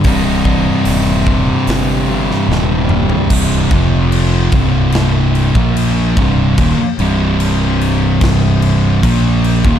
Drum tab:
CC |----------------|x-x-x-x-x-x-x-x-|x-x-x-x-x-x-x-x-|
HH |o---o---o-------|----------------|----------------|
SD |--------o--oo---|--------o-------|--------o-------|
T2 |--------------o-|----------------|----------------|
FT |---------------o|----------------|----------------|
BD |o-o---o---------|o-o---o----o--o-|o-------o---o--o|